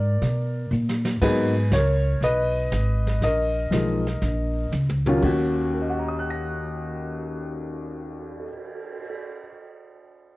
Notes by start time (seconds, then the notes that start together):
Already playing: G#2 A#4 D5
0.22 B2, brush sweep, snare
0.71 A#2, hi-hat pedal
0.89 snare
1.05 snare
1.22 G#2 F#3 A#3 B3 D#4 G#4 B4, brush sweep, kick, snare, crash
1.71 C#2 A#4 C#5, snare, hi-hat pedal
2.21 B1 B4 D#5, brush sweep, snare
2.72 G#1, snare, hi-hat pedal
3.07 snare
3.21 A#1 A#4 D#5, brush sweep, snare
3.71 B1 F3 G#3 A#3 D#4, snare, hi-hat pedal
4.07 snare
4.22 A#1, brush sweep, snare
4.72 C#2, hi-hat pedal, high tom
4.89 mid tom
5.06 D#2 F#3 A#3 C#4 F4, mid tom
5.22 D#2 D#3 C#4 F#4, kick, crash
5.57 cymbal swell
5.74 A#4
5.82 D#5
5.90 F#5
5.99 A#5
6.08 D#6
6.19 F#6
6.30 A#6